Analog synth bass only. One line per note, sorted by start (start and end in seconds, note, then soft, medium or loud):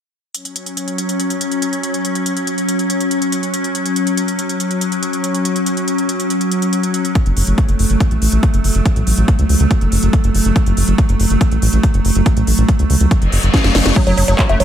7.26 7.32 F#1 medium
7.37 7.43 F#1 loud
7.47 7.53 F#1 medium
7.69 7.75 F#1 medium
7.79 7.85 F#1 loud
7.90 7.96 F#1 medium
8.11 8.17 A1 medium
8.22 8.28 A1 loud
8.32 8.38 A1 medium
8.54 8.60 F#1 medium
8.64 8.70 F#1 loud
8.75 8.81 F#1 medium
8.96 9.02 A1 medium
9.07 9.13 A1 loud
9.17 9.24 A1 medium
9.39 9.45 C#2 medium
9.49 9.55 C#2 medium
9.60 9.66 C#2 medium
9.81 9.87 F#1 medium
9.92 9.98 F#1 loud
10.03 10.09 F#1 medium
10.24 10.30 F#1 medium
10.35 10.41 F#1 loud
10.45 10.51 F#1 medium
10.66 10.73 F#1 medium
10.77 10.83 F#1 loud
10.88 10.94 F#1 medium
11.09 11.15 F#1 medium
11.20 11.26 F#1 loud
11.30 11.36 F#1 medium
11.52 11.58 A1 medium
11.62 11.68 A1 loud
11.73 11.79 A1 medium
11.94 12.00 F#1 medium
12.05 12.11 F#1 loud
12.15 12.21 F#1 medium
12.37 12.43 A1 medium
12.47 12.53 A1 medium
12.58 12.64 A1 medium
12.79 12.85 C#2 medium
12.90 12.96 C#2 medium
13.00 13.07 C#2 medium
13.22 13.28 F#1 medium
13.32 13.38 F#1 loud
13.43 13.49 F#1 medium
13.64 13.70 F#1 medium
13.75 13.81 F#1 loud
13.86 13.92 F#1 medium
14.07 14.13 F#1 medium
14.17 14.24 F#1 loud
14.28 14.34 F#1 medium
14.49 14.55 F#1 medium
14.60 14.64 F#1 medium